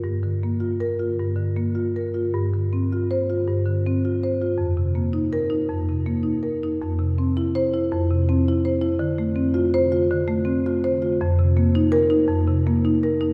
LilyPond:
\new Staff \with { instrumentName = "Marimba" } { \time 4/4 \key g \minor \tempo 4 = 108 << { r4 \tuplet 3/2 { r8 bes'4 } r2 | r4 \tuplet 3/2 { r8 c''4 } r2 | r4 \tuplet 3/2 { r8 bes'4 } r2 | r4 \tuplet 3/2 { r8 c''4 } r2 |
r4 \tuplet 3/2 { r8 c''4 } r2 | r4 \tuplet 3/2 { r8 bes'4 } r2 | } \\ { \tuplet 3/2 { g,8 d8 bes8 f'4 f'8 g,8 d8 bes8 f'8 bes'8 f'8 } | \tuplet 3/2 { g,8 d8 c'8 f'4 f'8 g,8 d8 c'8 f'8 c''8 f'8 } | \tuplet 3/2 { f,8 c8 bes8 ees'4 ees'8 f,8 c8 bes8 ees'8 bes'8 ees'8 } | \tuplet 3/2 { f,8 c8 c'8 e'4 e'8 f,8 c8 c'8 e'8 c''8 e'8 } |
\tuplet 3/2 { d8 a8 c'8 f'4 f'8 d8 a8 c'8 f'8 c''8 f'8 } | \tuplet 3/2 { f,8 c8 bes8 ees'4 ees'8 f,8 c8 bes8 ees'8 bes'8 ees'8 } | } >> }